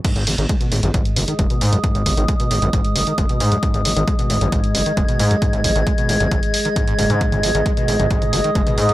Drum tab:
CC |x---------------|----------------|----------------|----------------|
HH |xxoxxxoxxxoxxxox|xxoxxxoxxxoxxxox|xxoxxxoxxxoxxxox|xxoxxxoxxxoxxxox|
T2 |----------------|----------------|----------------|----------------|
BD |o---o---o---o---|o-o-o---o---o---|o---o---o---o---|o-o-o---o---o---|

CC |----------------|
HH |xxoxxxoxxxoxxxox|
T2 |-o-----o-o---o--|
BD |o---o---o---o---|